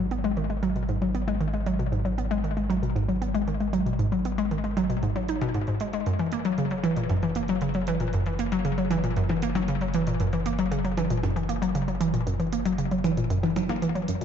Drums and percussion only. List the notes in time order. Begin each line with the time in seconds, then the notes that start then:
0.11 closed hi-hat
0.24 closed hi-hat
0.37 closed hi-hat
0.50 closed hi-hat
0.63 closed hi-hat, percussion blips
0.76 closed hi-hat
0.89 closed hi-hat
1.02 closed hi-hat, percussion blips
1.15 closed hi-hat
1.28 closed hi-hat, percussion blips
1.41 closed hi-hat
1.53 closed hi-hat
1.66 closed hi-hat
1.80 closed hi-hat
1.93 closed hi-hat
2.06 closed hi-hat
2.18 closed hi-hat
2.31 closed hi-hat
2.44 closed hi-hat
2.57 closed hi-hat
2.70 closed hi-hat, percussion blips
2.83 closed hi-hat
2.96 closed hi-hat, percussion blips
3.09 closed hi-hat
3.22 closed hi-hat
3.35 closed hi-hat
3.48 closed hi-hat
3.60 closed hi-hat
3.73 closed hi-hat
3.87 closed hi-hat
3.99 closed hi-hat
4.12 closed hi-hat
4.25 closed hi-hat
4.38 closed hi-hat
4.51 closed hi-hat
4.64 closed hi-hat
4.77 closed hi-hat, percussion blips
4.90 closed hi-hat
5.03 closed hi-hat
5.16 closed hi-hat, percussion blips
5.29 closed hi-hat
5.41 closed hi-hat, percussion blips
5.54 closed hi-hat
5.67 closed hi-hat
5.80 closed hi-hat
5.93 closed hi-hat
6.06 closed hi-hat
6.19 closed hi-hat
6.32 closed hi-hat
6.45 closed hi-hat
6.58 closed hi-hat
6.71 closed hi-hat
6.84 closed hi-hat, percussion blips
6.96 closed hi-hat
7.09 closed hi-hat, percussion blips
7.23 closed hi-hat
7.35 closed hi-hat
7.48 closed hi-hat
7.61 closed hi-hat
7.74 closed hi-hat
7.87 closed hi-hat
8.00 closed hi-hat
8.13 closed hi-hat
8.26 closed hi-hat
8.39 closed hi-hat
8.52 closed hi-hat
8.65 closed hi-hat
8.78 closed hi-hat
8.91 closed hi-hat, percussion blips
9.04 closed hi-hat
9.16 closed hi-hat
9.29 closed hi-hat, percussion blips
9.42 closed hi-hat
9.55 closed hi-hat, percussion blips
9.68 closed hi-hat
9.81 closed hi-hat
9.94 closed hi-hat
10.07 closed hi-hat
10.20 closed hi-hat
10.33 closed hi-hat
10.46 closed hi-hat
10.59 closed hi-hat
10.72 closed hi-hat
10.85 closed hi-hat
10.97 closed hi-hat, percussion blips
11.10 closed hi-hat
11.23 closed hi-hat, percussion blips
11.36 closed hi-hat
11.49 closed hi-hat
11.62 closed hi-hat
11.75 closed hi-hat
11.88 closed hi-hat
12.01 closed hi-hat
12.14 closed hi-hat
12.27 closed hi-hat
12.40 closed hi-hat
12.53 closed hi-hat
12.65 closed hi-hat
12.78 closed hi-hat
12.91 closed hi-hat
13.04 closed hi-hat, percussion blips
13.17 closed hi-hat
13.30 closed hi-hat
13.43 closed hi-hat, percussion blips
13.56 closed hi-hat, percussion blips
13.69 closed hi-hat, percussion blips
13.82 closed hi-hat
13.95 closed hi-hat
14.08 closed hi-hat
14.21 closed hi-hat